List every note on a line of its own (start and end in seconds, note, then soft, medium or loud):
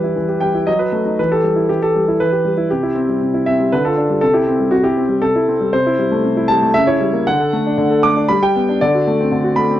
0.00 0.15 E3 soft
0.00 0.11 G3 soft
0.00 0.24 E4 soft
0.00 0.29 G4 soft
0.00 0.42 B4 medium
0.16 0.66 E3 soft
0.29 0.49 G4 soft
0.41 0.62 G3 soft
0.41 0.67 G5 medium
0.55 0.67 E4 soft
0.67 1.17 F#3 soft
0.67 0.80 D#5 medium
0.79 1.00 F#4 soft
0.79 1.18 B4 medium
0.92 1.13 A3 soft
1.05 1.18 D#4 soft
1.19 1.68 E3 soft
1.19 1.31 B4 medium
1.32 1.52 G4 soft
1.32 1.69 A4 medium
1.43 1.64 G3 soft
1.56 1.77 E4 soft
1.69 2.19 E3 soft
1.69 1.82 G4 medium
1.82 2.03 G4 soft
1.82 2.20 A4 medium
1.96 2.16 G3 soft
2.08 2.28 E4 soft
2.20 2.69 E3 soft
2.20 2.71 B4 medium
2.32 2.53 G4 soft
2.45 2.65 G3 soft
2.57 2.70 E4 soft
2.70 3.20 C3 soft
2.70 3.46 G4 medium
2.83 3.03 E4 soft
2.95 3.16 C4 soft
3.09 3.29 G3 soft
3.21 3.70 C3 soft
3.34 3.54 E4 soft
3.46 3.67 C4 soft
3.46 3.72 E5 medium
3.59 3.72 G3 soft
3.72 4.20 D3 soft
3.72 3.85 B4 medium
3.85 4.05 F4 soft
3.85 4.20 A4 medium
3.97 4.17 D4 soft
4.09 4.22 G3 soft
4.21 4.70 C3 soft
4.21 4.34 A4 medium
4.33 4.54 E4 soft
4.33 4.71 G4 medium
4.47 4.67 C4 soft
4.59 4.79 G3 soft
4.71 5.20 C3 soft
4.71 4.84 F#4 medium
4.83 5.04 E4 soft
4.83 5.22 G4 medium
4.97 5.18 C4 soft
5.09 5.30 G3 soft
5.22 5.71 C3 soft
5.22 5.73 A4 medium
5.36 5.56 E4 soft
5.48 5.68 C4 soft
5.61 5.73 G3 soft
5.73 6.23 C3 medium
5.73 6.49 C5 medium
5.87 6.07 E4 soft
5.99 6.19 G3 soft
6.12 6.31 A3 soft
6.24 6.73 C3 soft
6.37 6.57 E4 soft
6.48 6.69 G3 soft
6.48 6.74 A5 medium
6.62 6.74 A3 soft
6.74 7.25 C#3 medium
6.74 6.87 E5 medium
6.87 7.08 E4 soft
6.87 7.26 C#5 medium
7.01 7.21 G3 soft
7.13 7.26 A#3 soft
7.27 7.76 D3 medium
7.27 8.03 F#5 medium
7.40 7.60 A4 soft
7.53 7.73 A3 soft
7.66 7.86 D4 soft
7.78 8.27 D3 soft
7.90 8.10 A4 soft
8.03 8.23 A3 soft
8.03 8.28 D6 medium
8.17 8.29 D4 soft
8.28 8.79 G3 medium
8.28 8.41 B5 medium
8.43 8.62 G4 soft
8.43 8.80 G5 medium
8.56 8.75 B3 soft
8.69 8.80 D4 soft
8.81 9.30 D3 medium
8.81 9.58 D5 medium
8.95 9.14 F#4 soft
9.07 9.27 A3 soft
9.20 9.40 C4 soft
9.32 9.80 D3 soft
9.44 9.65 F#4 soft
9.56 9.77 A3 soft
9.56 9.80 B5 medium
9.71 9.80 C4 soft